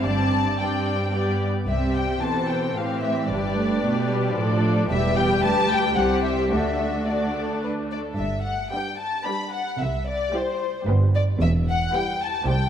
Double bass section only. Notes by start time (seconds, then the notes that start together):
0.06 G1
1.68 C2
3.31 G1
4.91 E1
5.97 C2
6.53 D2
8.19 G1
9.81 C2
10.88 G1
11.41 E1
12.46 C2